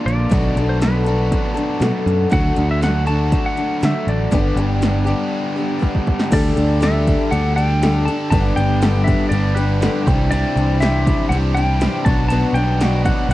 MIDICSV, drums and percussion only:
0, 0, Header, 1, 2, 480
1, 0, Start_track
1, 0, Tempo, 498753
1, 311, Time_signature, 4, 2, 24, 8
1, 12835, End_track
2, 0, Start_track
2, 0, Title_t, "Drums"
2, 76, Note_on_c, 9, 42, 76
2, 172, Note_off_c, 9, 42, 0
2, 303, Note_on_c, 9, 42, 104
2, 306, Note_on_c, 9, 36, 115
2, 399, Note_off_c, 9, 42, 0
2, 402, Note_off_c, 9, 36, 0
2, 549, Note_on_c, 9, 42, 73
2, 645, Note_off_c, 9, 42, 0
2, 785, Note_on_c, 9, 42, 106
2, 791, Note_on_c, 9, 38, 110
2, 881, Note_off_c, 9, 42, 0
2, 887, Note_off_c, 9, 38, 0
2, 1024, Note_on_c, 9, 42, 77
2, 1120, Note_off_c, 9, 42, 0
2, 1268, Note_on_c, 9, 36, 88
2, 1270, Note_on_c, 9, 42, 84
2, 1364, Note_off_c, 9, 36, 0
2, 1366, Note_off_c, 9, 42, 0
2, 1511, Note_on_c, 9, 42, 65
2, 1608, Note_off_c, 9, 42, 0
2, 1748, Note_on_c, 9, 42, 104
2, 1754, Note_on_c, 9, 38, 114
2, 1844, Note_off_c, 9, 42, 0
2, 1850, Note_off_c, 9, 38, 0
2, 1997, Note_on_c, 9, 42, 74
2, 2093, Note_off_c, 9, 42, 0
2, 2228, Note_on_c, 9, 42, 99
2, 2233, Note_on_c, 9, 36, 127
2, 2324, Note_off_c, 9, 42, 0
2, 2330, Note_off_c, 9, 36, 0
2, 2468, Note_on_c, 9, 42, 71
2, 2564, Note_off_c, 9, 42, 0
2, 2718, Note_on_c, 9, 42, 86
2, 2724, Note_on_c, 9, 38, 122
2, 2814, Note_off_c, 9, 42, 0
2, 2820, Note_off_c, 9, 38, 0
2, 2953, Note_on_c, 9, 42, 68
2, 3049, Note_off_c, 9, 42, 0
2, 3195, Note_on_c, 9, 42, 82
2, 3198, Note_on_c, 9, 36, 77
2, 3291, Note_off_c, 9, 42, 0
2, 3294, Note_off_c, 9, 36, 0
2, 3439, Note_on_c, 9, 42, 62
2, 3536, Note_off_c, 9, 42, 0
2, 3684, Note_on_c, 9, 42, 101
2, 3689, Note_on_c, 9, 38, 113
2, 3780, Note_off_c, 9, 42, 0
2, 3786, Note_off_c, 9, 38, 0
2, 3926, Note_on_c, 9, 42, 73
2, 4023, Note_off_c, 9, 42, 0
2, 4157, Note_on_c, 9, 42, 100
2, 4162, Note_on_c, 9, 36, 108
2, 4253, Note_off_c, 9, 42, 0
2, 4258, Note_off_c, 9, 36, 0
2, 4401, Note_on_c, 9, 42, 81
2, 4497, Note_off_c, 9, 42, 0
2, 4640, Note_on_c, 9, 42, 98
2, 4646, Note_on_c, 9, 38, 115
2, 4736, Note_off_c, 9, 42, 0
2, 4742, Note_off_c, 9, 38, 0
2, 4879, Note_on_c, 9, 42, 67
2, 4975, Note_off_c, 9, 42, 0
2, 5605, Note_on_c, 9, 36, 71
2, 5702, Note_off_c, 9, 36, 0
2, 5725, Note_on_c, 9, 36, 62
2, 5821, Note_off_c, 9, 36, 0
2, 5844, Note_on_c, 9, 36, 85
2, 5940, Note_off_c, 9, 36, 0
2, 5961, Note_on_c, 9, 38, 80
2, 6058, Note_off_c, 9, 38, 0
2, 6081, Note_on_c, 9, 49, 117
2, 6081, Note_on_c, 9, 51, 102
2, 6085, Note_on_c, 9, 36, 123
2, 6177, Note_off_c, 9, 49, 0
2, 6177, Note_off_c, 9, 51, 0
2, 6181, Note_off_c, 9, 36, 0
2, 6324, Note_on_c, 9, 51, 76
2, 6420, Note_off_c, 9, 51, 0
2, 6566, Note_on_c, 9, 51, 104
2, 6572, Note_on_c, 9, 38, 116
2, 6662, Note_off_c, 9, 51, 0
2, 6668, Note_off_c, 9, 38, 0
2, 6807, Note_on_c, 9, 51, 76
2, 6808, Note_on_c, 9, 36, 83
2, 6903, Note_off_c, 9, 51, 0
2, 6904, Note_off_c, 9, 36, 0
2, 7049, Note_on_c, 9, 51, 95
2, 7145, Note_off_c, 9, 51, 0
2, 7292, Note_on_c, 9, 51, 76
2, 7388, Note_off_c, 9, 51, 0
2, 7532, Note_on_c, 9, 51, 107
2, 7538, Note_on_c, 9, 38, 120
2, 7628, Note_off_c, 9, 51, 0
2, 7634, Note_off_c, 9, 38, 0
2, 7775, Note_on_c, 9, 51, 80
2, 7871, Note_off_c, 9, 51, 0
2, 8009, Note_on_c, 9, 36, 120
2, 8010, Note_on_c, 9, 51, 114
2, 8106, Note_off_c, 9, 36, 0
2, 8106, Note_off_c, 9, 51, 0
2, 8250, Note_on_c, 9, 51, 79
2, 8347, Note_off_c, 9, 51, 0
2, 8488, Note_on_c, 9, 51, 107
2, 8494, Note_on_c, 9, 38, 127
2, 8585, Note_off_c, 9, 51, 0
2, 8590, Note_off_c, 9, 38, 0
2, 8732, Note_on_c, 9, 36, 90
2, 8735, Note_on_c, 9, 51, 76
2, 8828, Note_off_c, 9, 36, 0
2, 8832, Note_off_c, 9, 51, 0
2, 8968, Note_on_c, 9, 51, 99
2, 9064, Note_off_c, 9, 51, 0
2, 9210, Note_on_c, 9, 51, 85
2, 9306, Note_off_c, 9, 51, 0
2, 9454, Note_on_c, 9, 51, 113
2, 9460, Note_on_c, 9, 38, 119
2, 9550, Note_off_c, 9, 51, 0
2, 9556, Note_off_c, 9, 38, 0
2, 9692, Note_on_c, 9, 36, 118
2, 9697, Note_on_c, 9, 51, 72
2, 9788, Note_off_c, 9, 36, 0
2, 9793, Note_off_c, 9, 51, 0
2, 9929, Note_on_c, 9, 51, 115
2, 10025, Note_off_c, 9, 51, 0
2, 10175, Note_on_c, 9, 51, 68
2, 10271, Note_off_c, 9, 51, 0
2, 10413, Note_on_c, 9, 51, 95
2, 10419, Note_on_c, 9, 38, 116
2, 10509, Note_off_c, 9, 51, 0
2, 10515, Note_off_c, 9, 38, 0
2, 10651, Note_on_c, 9, 36, 91
2, 10655, Note_on_c, 9, 51, 78
2, 10748, Note_off_c, 9, 36, 0
2, 10752, Note_off_c, 9, 51, 0
2, 10896, Note_on_c, 9, 51, 93
2, 10992, Note_off_c, 9, 51, 0
2, 11134, Note_on_c, 9, 51, 70
2, 11231, Note_off_c, 9, 51, 0
2, 11367, Note_on_c, 9, 51, 102
2, 11373, Note_on_c, 9, 38, 127
2, 11463, Note_off_c, 9, 51, 0
2, 11469, Note_off_c, 9, 38, 0
2, 11604, Note_on_c, 9, 36, 118
2, 11607, Note_on_c, 9, 51, 77
2, 11701, Note_off_c, 9, 36, 0
2, 11703, Note_off_c, 9, 51, 0
2, 11840, Note_on_c, 9, 51, 113
2, 11936, Note_off_c, 9, 51, 0
2, 12082, Note_on_c, 9, 51, 76
2, 12179, Note_off_c, 9, 51, 0
2, 12324, Note_on_c, 9, 51, 102
2, 12330, Note_on_c, 9, 38, 113
2, 12421, Note_off_c, 9, 51, 0
2, 12427, Note_off_c, 9, 38, 0
2, 12561, Note_on_c, 9, 36, 94
2, 12564, Note_on_c, 9, 51, 78
2, 12657, Note_off_c, 9, 36, 0
2, 12661, Note_off_c, 9, 51, 0
2, 12835, End_track
0, 0, End_of_file